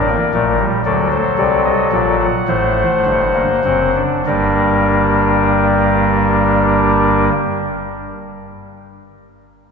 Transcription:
0.00 0.16 A1 medium
0.00 0.16 A2 medium
0.00 0.65 A#4 medium
0.00 0.45 D5 medium
0.10 0.31 A#3 medium
0.34 0.66 A#1 medium
0.34 0.66 A#2 medium
0.34 0.56 A3 medium
0.59 0.81 G3 medium
0.85 1.18 D2 medium
0.85 1.18 D3 medium
0.85 2.25 F#3 medium
0.85 2.25 A4 medium
0.85 1.08 D5 medium
1.12 1.34 C5 medium
1.38 1.72 C2 medium
1.38 1.72 C3 medium
1.38 1.61 D5 medium
1.65 1.88 D#5 medium
1.92 2.27 A#1 medium
1.92 2.27 A#2 medium
1.92 2.16 D5 medium
2.20 3.97 F#5 medium
2.48 2.84 A1 medium
2.48 2.84 A2 medium
2.48 3.23 A3 medium
2.48 4.01 C5 medium
3.06 3.43 G1 medium
3.06 3.43 G2 medium
3.35 3.61 A#3 medium
3.65 4.03 F#1 medium
3.65 4.03 F#2 medium
3.65 3.91 C4 medium
3.96 4.22 D4 medium
4.26 7.30 G1 medium
4.26 7.30 G2 medium
4.26 7.32 G3 medium
4.26 7.32 A#3 medium
4.26 7.29 D4 medium
4.26 7.29 A#4 medium
4.26 7.29 D5 medium

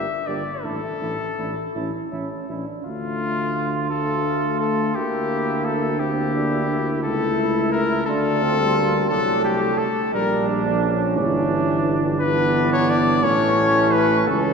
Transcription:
0.00 0.28 E5 loud
0.27 0.44 G1 medium
0.27 0.43 A#3 medium
0.27 0.44 D4 medium
0.27 0.44 G4 medium
0.27 0.65 D5 medium
0.63 0.80 A1 medium
0.63 0.79 A3 medium
0.63 0.81 D4 medium
0.63 0.81 E4 medium
0.63 2.48 A4 loud
1.00 1.17 A1 medium
1.00 1.16 A3 medium
1.00 1.17 D4 medium
1.00 1.18 E4 medium
1.38 1.54 A1 medium
1.38 1.54 A3 soft
1.38 1.54 D4 medium
1.38 1.54 E4 medium
1.75 1.91 A1 medium
1.75 1.91 C#4 medium
1.75 2.09 E4 medium
1.75 1.91 E4 medium
2.12 2.28 A1 medium
2.12 2.48 C#4 medium
2.12 2.28 C#4 medium
2.12 2.28 E4 medium
2.49 2.65 A1 medium
2.49 2.65 C#4 medium
2.49 2.84 D4 medium
2.49 2.66 E4 soft
2.85 4.91 D2 medium
2.85 3.86 A3 medium
2.85 3.86 F4 loud
2.85 3.86 F4 medium
3.90 4.91 A3 medium
3.90 4.97 A3 medium
3.90 4.93 F4 medium
3.90 4.58 A4 loud
4.60 4.97 A4 loud
4.95 7.06 D2 medium
4.95 6.00 A#3 medium
4.95 6.01 A#3 medium
4.95 5.98 E4 medium
4.95 5.67 G4 loud
5.65 6.01 A4 loud
5.99 7.02 A#3 medium
5.99 6.34 C4 medium
5.99 7.01 E4 medium
5.99 7.03 G4 loud
6.35 6.68 D4 medium
6.69 8.05 E4 medium
7.03 8.09 C#2 medium
7.03 8.05 A3 medium
7.03 8.09 E4 medium
7.03 7.71 A4 loud
7.72 8.06 A#4 loud
8.07 9.10 D2 medium
8.07 8.61 A3 medium
8.07 8.44 D4 medium
8.07 9.10 F4 medium
8.07 9.08 A4 loud
8.42 8.78 C4 medium
8.59 9.12 G3 medium
8.76 9.13 A#3 medium
9.09 9.85 C2 medium
9.09 9.86 F#3 medium
9.09 10.16 A3 loud
9.09 9.85 D4 medium
9.09 9.44 A4 loud
9.44 9.80 G4 loud
9.78 10.13 A4 loud
10.13 11.18 A#1 loud
10.13 10.62 G3 medium
10.13 10.50 G3 medium
10.13 11.13 D4 loud
10.13 10.47 A#4 loud
10.48 10.83 D4 loud
10.66 11.19 F3 medium
10.83 11.91 C#4 loud
11.16 13.25 G1 loud
11.16 12.20 E3 loud
11.16 12.18 D4 loud
12.20 13.22 E3 medium
12.20 13.26 B3 loud
12.20 13.25 D4 loud
12.20 12.68 B4 loud
12.73 12.92 C#5 loud
12.90 13.25 D5 loud
13.23 14.27 A1 loud
13.23 14.25 E3 loud
13.23 14.29 A3 loud
13.23 14.27 C#4 loud
13.23 13.94 C#5 loud
13.93 14.27 B4 loud
14.27 14.53 C#2 loud
14.27 14.53 E3 medium
14.27 14.53 C#4 loud
14.27 14.53 C#4 medium
14.27 14.53 A4 loud

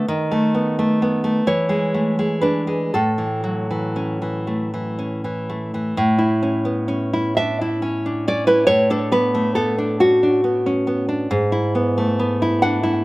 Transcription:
0.08 1.41 D#3 medium
0.31 0.78 A3 medium
0.54 1.01 B3 soft
0.79 1.23 A3 soft
1.02 1.46 B3 medium
1.24 1.46 A3 soft
1.47 2.90 E3 medium
1.47 2.39 C#5 medium
1.69 2.18 G#3 soft
1.94 2.94 A3 soft
2.19 2.66 G#3 soft
2.41 2.93 D4 soft
2.41 2.91 B4 medium
2.67 2.93 G#3 soft
2.94 5.92 A2 medium
2.94 4.42 A4 medium
3.18 3.69 E3 soft
3.44 4.96 F#3 soft
3.71 4.20 E3 soft
3.96 4.97 C#4 soft
4.22 4.72 E3 soft
4.47 5.48 A3 soft
4.74 5.23 E3 soft
4.99 5.97 C#4 soft
5.24 5.73 E3 soft
5.49 5.96 A3 soft
5.74 5.96 E3 soft
5.97 8.65 A2 medium
6.18 7.12 E4 medium
6.43 6.87 C#4 medium
6.65 8.03 B3 soft
6.88 7.81 C#4 medium
7.13 7.36 E4 medium
7.37 7.82 D4 soft
7.37 7.61 E5 medium
7.61 8.28 E4 medium
7.82 8.26 C#4 medium
8.06 8.70 D4 soft
8.28 8.70 C#4 medium
8.28 8.47 D5 medium
8.47 8.66 E4 medium
8.47 8.69 B4 medium
8.67 11.26 A2 medium
8.67 8.89 C#5 loud
8.90 9.77 D4 medium
8.90 9.11 A4 medium
9.12 9.55 B3 medium
9.12 9.54 B4 medium
9.35 10.65 A3 medium
9.55 9.78 B3 medium
9.55 9.97 A4 medium
9.78 10.22 D4 medium
10.00 10.65 C#4 soft
10.00 11.27 F#4 medium
10.23 10.44 D4 soft
10.44 10.86 B3 medium
10.66 11.31 C#4 medium
10.87 11.08 B3 medium
11.09 11.30 D4 medium
11.31 13.04 G#2 medium
11.52 12.41 E4 medium
11.75 12.18 B3 soft
11.98 13.04 A3 medium
12.19 13.04 B3 medium
12.42 12.82 E4 medium
12.62 13.04 D4 soft
12.62 13.04 F#5 medium
12.83 13.04 E4 medium

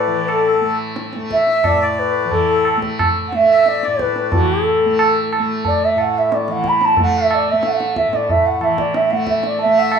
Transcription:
0.00 1.69 A2 medium
0.00 0.61 A3 medium
0.00 0.23 B4 medium
0.00 0.48 D5 medium
0.07 2.25 E3 medium
0.24 0.31 B4 soft
0.28 0.64 A4 medium
0.28 tabla na medium
0.47 0.78 A4 soft
0.61 1.16 A3 medium
0.96 tabla te medium
1.13 2.77 A3 medium
1.13 tabla te medium
1.31 1.66 E5 loud
1.31 tabla ke medium
1.47 1.83 E5 medium
1.47 tabla te medium
1.64 1.92 D5 loud
1.64 tabla na medium
1.64 tabla ge medium
1.69 3.86 A2 medium
1.82 2.52 D5 medium
1.92 2.01 D5 medium
2.00 2.32 B4 medium
2.25 4.33 E3 medium
2.32 2.64 A4 medium
2.32 tabla tin medium
2.32 tabla ge medium
2.49 2.81 A4 soft
2.65 tabla na medium
2.77 3.34 A3 medium
2.82 tabla ke medium
2.99 tabla na medium
2.99 tabla ge medium
3.28 3.37 F#5 medium
3.33 4.86 A3 medium
3.33 3.61 E5 loud
3.33 tabla te medium
3.51 3.85 E5 medium
3.61 3.69 E5 medium
3.66 4.03 D5 medium
3.66 tabla te medium
3.83 5.94 A2 medium
3.83 4.46 D5 medium
3.83 tabla te medium
3.99 4.33 B4 medium
3.99 tabla ke medium
4.16 tabla te medium
4.32 6.47 E3 medium
4.32 4.64 F#4 loud
4.32 tabla tin loud
4.32 tabla ge loud
4.64 5.30 A4 loud
4.86 5.39 A3 medium
4.99 tabla na medium
5.33 tabla na medium
5.39 7.00 A3 medium
5.65 5.86 D5 medium
5.65 tabla tin medium
5.65 tabla ge medium
5.84 6.02 E5 medium
5.95 8.07 A2 medium
5.95 tabla na medium
6.01 6.19 F#5 medium
6.18 6.35 E5 loud
6.32 6.53 D5 medium
6.32 tabla te medium
6.48 8.60 E3 medium
6.48 6.70 F#5 loud
6.48 tabla te medium
6.64 tabla ke medium
6.68 6.86 B5 loud
6.81 7.00 A5 loud
6.81 tabla te medium
6.97 7.53 A3 medium
6.97 tabla tin medium
6.97 tabla ge medium
7.03 7.19 F#5 loud
7.17 7.36 E5 loud
7.31 7.52 D5 medium
7.31 tabla na medium
7.51 9.13 A3 medium
7.51 7.69 E5 medium
7.63 tabla te medium
7.67 7.75 F#5 loud
7.73 7.78 E5 medium
7.73 7.98 F#5 loud
7.80 tabla te medium
7.96 8.16 E5 medium
7.96 tabla ke medium
8.08 9.99 A2 medium
8.13 8.32 D5 medium
8.13 tabla te medium
8.29 8.48 E5 loud
8.29 tabla tin medium
8.29 tabla ge medium
8.46 8.65 F#5 medium
8.60 9.99 E3 medium
8.60 8.81 E5 medium
8.60 tabla na medium
8.78 8.97 D5 medium
8.78 tabla ke medium
8.94 9.14 E5 medium
8.94 tabla te medium
9.10 9.65 A3 medium
9.10 9.28 F#5 loud
9.10 tabla te medium
9.27 9.44 E5 medium
9.27 tabla ke medium
9.43 9.60 D5 medium
9.43 tabla te medium
9.59 9.80 E5 loud
9.59 tabla tin medium
9.65 9.99 A3 medium
9.77 9.99 E5 medium
9.77 9.97 F#5 medium
9.92 9.99 E5 medium
9.92 tabla na medium

